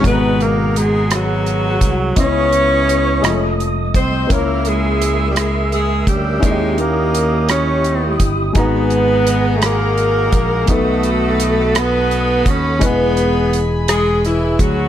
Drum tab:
HH |xxxxxx|xxxxxx|xxxxxx|xxxxxx|
SD |---r--|--rr--|---r--|---r--|
BD |o----o|o----o|o----o|o----o|

HH |xxxxxx|xxxxxx|xxxxxx|
SD |---r--|---r--|---rr-|
BD |o----o|o----o|o----o|